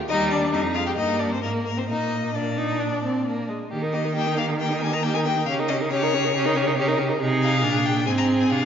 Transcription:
0.09 0.55 D#2 medium
0.09 0.50 G3 medium
0.09 0.33 D#4 loud
0.09 0.30 D#5 loud
0.30 0.55 D4 medium
0.30 0.52 D5 medium
0.52 0.97 F2 medium
0.52 0.60 G3 medium
0.52 0.76 D#4 loud
0.52 0.61 D#5 loud
0.74 0.99 G#3 medium
0.74 0.86 F4 medium
0.74 0.86 F5 medium
0.86 0.91 G4 medium
0.86 0.91 G5 medium
0.96 1.44 G2 medium
0.96 1.41 A#3 medium
0.96 1.22 D#4 medium
0.96 1.20 D#5 loud
1.19 1.33 D4 medium
1.19 1.31 D5 medium
1.32 1.42 C4 medium
1.32 1.42 C5 medium
1.42 1.90 G#2 medium
1.42 1.87 A#3 medium
1.42 1.64 A#3 medium
1.42 1.50 A#4 medium
1.65 1.70 A#3 medium
1.65 1.79 A#4 medium
1.77 1.81 C4 medium
1.77 1.88 C5 medium
1.88 3.50 A#2 medium
1.88 2.34 A#3 medium
1.88 2.34 D#4 medium
1.88 2.36 D#5 medium
2.34 2.59 A#3 medium
2.34 3.46 D4 medium
2.34 3.48 D5 medium
2.57 2.82 D#4 medium
2.80 3.03 D4 medium
3.04 3.25 C4 medium
3.26 3.50 A#3 medium
3.48 3.71 G#3 medium
3.71 5.43 D#3 medium
3.71 3.84 A#3 medium
3.71 3.83 G4 medium
3.82 3.95 D#4 medium
3.82 3.95 A#4 medium
3.93 4.06 A#3 medium
3.93 4.06 G4 medium
3.93 4.14 D#5 medium
4.04 4.15 D#4 medium
4.04 4.15 A#4 medium
4.15 4.28 A#3 medium
4.15 4.28 G4 medium
4.15 4.37 G5 loud
4.27 4.39 D#4 medium
4.27 4.39 A#4 medium
4.37 4.50 A#3 medium
4.37 4.51 G4 medium
4.37 4.45 F5 loud
4.48 4.59 D#4 medium
4.48 4.60 A#4 medium
4.59 4.72 A#3 medium
4.59 4.74 G4 medium
4.59 4.80 G5 loud
4.70 4.83 D#4 medium
4.70 4.85 A#4 medium
4.81 4.94 A#3 medium
4.81 4.95 G4 medium
4.81 4.94 G#5 loud
4.93 5.03 D#4 medium
4.93 5.04 A#4 medium
4.93 5.05 A#5 loud
5.03 5.16 A#3 medium
5.03 5.17 G4 medium
5.03 5.14 G5 loud
5.14 5.27 D#4 medium
5.14 5.29 A#4 medium
5.14 5.19 G#5 loud
5.25 5.38 A#3 medium
5.25 5.39 G4 medium
5.25 5.45 G5 loud
5.36 5.47 D#4 medium
5.36 5.48 A#4 medium
5.45 7.17 C#3 loud
5.45 5.60 C#4 medium
5.45 5.61 G4 medium
5.45 5.53 F5 loud
5.59 5.71 D#4 medium
5.59 5.71 A#4 medium
5.68 5.82 C#4 medium
5.68 5.82 G4 medium
5.68 5.76 D#5 loud
5.80 5.91 D#4 medium
5.80 5.91 A#4 medium
5.90 6.04 C#4 medium
5.90 6.05 G4 medium
5.90 6.96 C#5 loud
6.02 6.15 D#4 medium
6.02 6.16 A#4 medium
6.14 6.26 C#4 medium
6.14 6.26 G4 medium
6.24 6.34 D#4 medium
6.24 6.35 A#4 medium
6.34 6.47 C#4 medium
6.34 6.47 G4 medium
6.45 6.57 D#4 medium
6.45 6.58 A#4 medium
6.56 6.68 C#4 medium
6.56 6.69 G4 medium
6.67 6.76 D#4 medium
6.67 6.76 A#4 medium
6.77 6.89 C#4 medium
6.77 6.89 G4 medium
6.87 7.00 D#4 medium
6.87 7.00 A#4 medium
6.98 7.10 C#4 medium
6.98 7.11 G4 medium
7.09 7.20 D#4 medium
7.09 7.20 A#4 medium
7.20 7.65 C3 loud
7.20 7.65 D#4 medium
7.20 8.03 G#4 loud
7.42 7.87 F5 loud
7.63 8.08 A#2 medium
7.63 8.07 D4 medium
7.85 8.06 G5 loud
8.07 8.53 G#2 loud
8.07 8.53 C4 medium
8.07 8.65 G#4 medium
8.07 8.11 G#5 loud
8.18 8.26 A#5 loud
8.40 8.51 G#5 medium
8.50 8.65 C3 medium
8.50 8.65 D4 medium
8.50 8.65 F5 loud

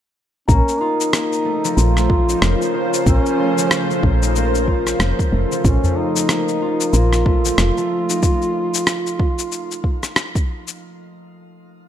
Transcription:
0.48 0.62 A#1 loud
0.48 8.19 C#3 medium
0.48 8.19 F3 medium
0.48 1.13 A#3 medium
0.48 0.83 C#4 medium
0.48 8.19 F4 medium
0.48 8.19 C5 medium
0.48 10.82 A#5 medium
0.48 kick loud
0.48 shaker medium
0.68 shaker soft
0.81 1.79 D#4 loud
0.81 2.74 F4 medium
1.00 shaker medium
1.13 1.51 A#3 medium
1.13 cross-stick loud
1.13 shaker medium
1.33 shaker soft
1.45 1.96 A3 medium
1.64 3.57 F3 medium
1.64 shaker medium
1.77 2.36 A#1 medium
1.77 2.74 F4 loud
1.77 shaker soft
1.97 2.48 A3 medium
1.97 cross-stick soft
1.97 shaker soft
2.10 kick medium
2.29 4.22 D#4 medium
2.29 shaker medium
2.42 2.55 F1 medium
2.42 3.06 A#3 medium
2.42 cross-stick medium
2.42 shaker medium
2.62 shaker soft
2.74 4.68 F4 medium
2.94 shaker medium
3.06 3.20 A#1 medium
3.06 3.45 A#3 medium
3.06 3.99 C#4 loud
3.06 kick loud
3.06 shaker medium
3.26 shaker soft
3.39 3.90 A3 medium
3.58 5.51 F3 medium
3.58 shaker medium
3.71 cross-stick loud
3.71 shaker soft
3.90 4.42 A3 medium
3.90 shaker soft
4.03 4.94 A#1 medium
4.03 kick loud
4.22 6.16 D#4 medium
4.22 shaker medium
4.36 5.00 A#3 medium
4.36 shaker soft
4.55 shaker soft
4.68 6.61 F4 medium
4.68 kick medium
4.87 cross-stick soft
4.87 shaker medium
5.00 5.13 F1 loud
5.00 5.39 A#3 medium
5.00 cross-stick medium
5.00 shaker soft
5.19 kick loud
5.19 shaker soft
5.32 5.46 F1 loud
5.32 5.84 A3 medium
5.52 7.44 F3 medium
5.52 shaker medium
5.65 5.78 A#1 loud
5.65 5.99 C#4 medium
5.65 kick loud
5.65 shaker medium
5.84 6.36 A3 medium
5.84 udu loud
5.84 shaker soft
5.97 6.95 D#4 loud
6.16 8.09 D#4 medium
6.16 shaker medium
6.29 6.93 A#3 medium
6.29 cross-stick loud
6.29 shaker medium
6.48 shaker soft
6.62 9.14 F4 medium
6.81 shaker medium
6.93 7.52 A#1 medium
6.93 7.32 A#3 medium
6.93 10.16 F4 loud
6.93 shaker medium
7.13 cross-stick soft
7.13 shaker soft
7.26 7.77 A3 medium
7.26 kick loud
7.45 10.86 F3 medium
7.45 shaker medium
7.58 7.71 F1 medium
7.58 cross-stick medium
7.58 shaker medium
7.77 11.10 A3 medium
7.77 shaker soft
8.09 10.80 D#4 medium
8.09 shaker medium
8.23 kick loud
8.23 shaker medium
8.42 shaker soft
8.74 shaker medium
8.87 cross-stick medium
8.87 shaker medium
9.07 shaker soft
9.19 kick loud
9.39 shaker medium
9.52 shaker medium
9.71 shaker soft
9.84 kick medium
10.03 cross-stick soft
10.03 shaker medium
10.16 cross-stick medium
10.16 shaker medium
10.35 kick loud
10.35 shaker soft
10.68 shaker medium

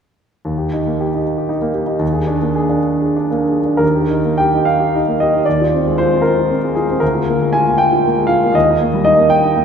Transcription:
0.45 1.98 D#2 soft
0.58 0.80 G4 soft
0.73 0.94 D#4 soft
0.87 1.08 A#3 soft
1.01 1.21 G4 soft
1.14 1.48 D#4 soft
1.38 1.58 G4 soft
1.49 1.70 D#4 soft
1.62 1.83 A#3 soft
1.74 1.96 G4 soft
1.87 2.01 D#4 soft
1.99 3.76 D#2 soft
2.13 2.36 G#4 soft
2.27 2.50 D4 soft
2.42 2.65 A#3 soft
2.55 2.79 G#4 soft
2.69 3.15 D4 soft
3.02 3.27 G#4 soft
3.16 3.43 D4 soft
3.31 3.59 A#3 soft
3.49 3.75 G#4 soft
3.65 3.81 D4 soft
3.77 5.40 D#2 soft
3.77 4.37 A#4 medium
3.95 4.19 G4 soft
4.10 4.33 D#4 soft
4.25 4.47 A#3 soft
4.38 4.61 G4 soft
4.38 4.65 G5 medium
4.54 4.94 D#4 soft
4.65 5.18 F5 medium
4.80 5.01 G4 soft
4.95 5.15 D#4 soft
5.08 5.28 A#3 soft
5.20 5.42 G4 soft
5.20 5.46 D#5 medium
5.35 5.47 D#4 soft
5.45 6.99 D#2 soft
5.45 5.98 D5 medium
5.61 5.81 F4 soft
5.74 5.94 C4 soft
5.87 6.07 G#3 soft
5.98 6.20 F4 soft
5.98 6.24 C5 medium
6.12 6.49 C4 soft
6.22 6.74 A#4 medium
6.38 6.58 F4 soft
6.51 6.71 C4 soft
6.64 6.84 G#3 soft
6.75 6.97 F4 soft
6.75 7.01 G#4 soft
6.91 7.02 C4 soft
7.00 8.51 D2 soft
7.00 7.52 A#4 medium
7.15 7.35 F4 soft
7.29 7.49 A#3 soft
7.41 7.61 G#3 soft
7.53 7.74 F4 soft
7.53 7.78 G#5 medium
7.67 8.05 A#3 soft
7.78 8.29 G5 medium
7.92 8.12 F4 soft
8.06 8.25 A#3 soft
8.18 8.38 G#3 soft
8.27 8.49 F4 soft
8.27 8.53 F5 medium
8.44 8.56 A#3 soft
8.52 9.65 D#2 soft
8.52 9.03 D#5 medium
8.70 8.89 D#4 soft
8.81 9.01 A#3 soft
8.94 9.13 G3 soft
9.04 9.26 D#4 soft
9.04 9.30 D#5 medium
9.18 9.54 A#3 soft
9.30 9.65 G5 medium
9.44 9.63 D#4 soft
9.56 9.65 A#3 soft

